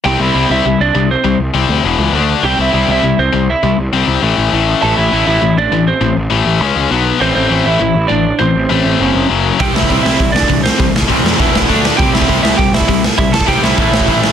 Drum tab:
HH |----------------|----------------|----------------|----------------|
SD |----------------|----------------|----------------|----------------|
BD |----------------|----------------|----------------|----------------|

HH |----------------|----------------|----------------|----------------|
SD |----------------|----------------|----------------|----------------|
BD |----------------|----------------|----------------|----------------|

HH |o---o---o---o---|o---o---o---o---|o---o---o---o---|o---o---o---o---|
SD |--o---o---o---o-|--o---o---o---o-|--o---o---o---o-|--o---o---o---o-|
BD |o--oo---o--oo---|o--oo---o--oo---|o--oo---o--oo---|o--oo---o--oo---|